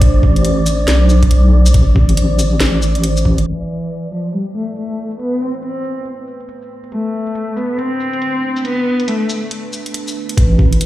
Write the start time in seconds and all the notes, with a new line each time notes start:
Already playing: A3 D4 C5 D5
0.01 A1, kick, closed hi-hat
0.23 kick
0.36 closed hi-hat
0.45 closed hi-hat
0.66 closed hi-hat, shaker
0.88 B1, snare, closed hi-hat
1.09 shaker
1.23 kick, closed hi-hat
1.31 closed hi-hat
1.66 closed hi-hat, shaker
1.74 A1, kick, closed hi-hat
1.96 kick
2.09 closed hi-hat
2.17 closed hi-hat
2.39 closed hi-hat, shaker
2.60 A1, snare, closed hi-hat
2.82 shaker
2.95 closed hi-hat
3.04 closed hi-hat
3.17 shaker
3.25 kick
3.38 closed hi-hat
3.47 E3 A3 E4 B4, closed hi-hat
3.82 closed hi-hat
3.90 closed hi-hat
4.12 F3, closed hi-hat, shaker
4.33 G3, closed hi-hat
4.55 A3, shaker
4.68 closed hi-hat
4.76 A3, closed hi-hat
5.11 closed hi-hat, shaker
5.19 B3, closed hi-hat
5.41 C4
5.54 closed hi-hat
5.63 C4, closed hi-hat
5.84 closed hi-hat, shaker
6.06 closed hi-hat
6.27 shaker
6.40 closed hi-hat
6.49 closed hi-hat
6.62 shaker
6.84 closed hi-hat
6.92 A3 D4, closed hi-hat
7.27 closed hi-hat
7.35 closed hi-hat
7.57 B3, closed hi-hat, shaker
7.78 C4, closed hi-hat
8.00 shaker
8.13 closed hi-hat
8.22 closed hi-hat
8.57 closed hi-hat, shaker
8.64 B3, closed hi-hat
9.00 closed hi-hat
9.08 A3, closed hi-hat
9.30 closed hi-hat, shaker
9.51 closed hi-hat
9.73 shaker
9.86 closed hi-hat
9.94 closed hi-hat
10.08 shaker
10.29 closed hi-hat
10.37 A1 A3 E4 B4, kick, closed hi-hat
10.59 kick
10.73 closed hi-hat
10.81 closed hi-hat